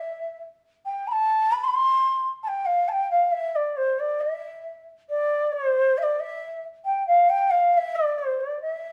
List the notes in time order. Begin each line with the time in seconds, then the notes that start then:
Already playing: E5
0.86 G5
1.08 B5
1.12 A5
1.52 B5
1.64 C6
1.68 B5
1.74 C6
2.43 A5
2.48 G5
2.66 F5
2.88 G5 A5
3.11 F5
3.32 E5
3.56 D5
3.77 C5
3.99 D5
4.21 E5
5.09 D5
5.53 C5
5.98 E5
6.03 D5
6.20 E5
6.85 G5
7.07 F5
7.29 G5
7.50 F5
7.73 F5
7.77 E5
7.95 D5
8.19 C5
8.40 D5
8.62 E5